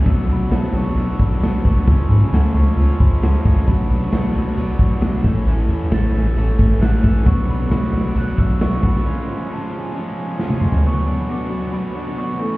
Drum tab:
HH |o-o-o-o-o-o-o-o-|o-o-o-o-o-o-o-o-|o-o-o-o-o-o-o-o-|o-o-o-o-o-o-o-o-|
SD |----o-------o---|----o-------o---|----o-------o---|----o-------o---|
T1 |----------------|----------------|----------------|----------------|
T2 |----------------|----------------|----------------|----------------|
FT |----------------|----------------|----------------|----------------|
BD |o---------o---o-|o---------o---o-|o---------o---o-|----------o---o-|

HH |o-o-o-o-o-o-o-o-|----------------|----------------|
SD |----o-------o---|------------o---|----------------|
T1 |----------------|-------------o--|----------------|
T2 |----------------|--------------o-|----------------|
FT |----------------|---------------o|----------------|
BD |o---------o---o-|----------------|----------------|